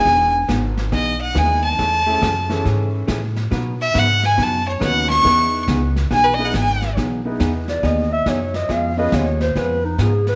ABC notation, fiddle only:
X:1
M:4/4
L:1/16
Q:"Swing" 1/4=139
K:E
V:1 name="Fiddle"
g2 z6 d2 f2 g2 a2- | a8 z8 | z2 e2 f2 g2 a2 c2 f2 c'2- | c'4 z4 g B d f g3 z |
z16 | z16 |]